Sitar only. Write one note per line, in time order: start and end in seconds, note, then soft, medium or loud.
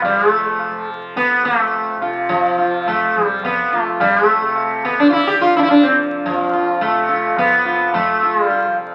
0.05 0.18 G3 medium
0.18 0.29 G#3 medium
0.29 0.85 A3 medium
1.17 1.45 B3 loud
1.45 1.98 A3 medium
2.02 2.28 F4 soft
2.29 2.88 F3 medium
2.58 2.84 F4 soft
2.88 3.26 A3 medium
3.26 3.44 G3 medium
3.45 3.82 B3 medium
3.73 3.98 F4 soft
3.82 4.00 A3 medium
4.01 4.26 G3 medium
4.26 4.84 A3 medium
4.85 4.99 B3 medium
5.00 5.09 D4 medium
5.09 5.27 E4 medium
5.09 5.12 F4 medium
5.27 5.41 G4 medium
5.41 5.55 F4 medium
5.57 5.62 D4 medium
5.57 5.59 E4 medium
5.63 5.69 E4 medium
5.70 5.84 D4 medium
5.83 5.96 C4 medium
6.26 6.83 F3 medium
6.53 6.79 F4 soft
6.81 7.38 A3 medium
7.09 7.35 F4 soft
7.38 7.90 B3 medium
7.65 7.91 F4 soft
7.94 8.36 A3 medium
8.22 8.48 F4 soft
8.36 8.47 G#3 medium
8.47 8.74 G3 medium
8.47 8.76 F4 soft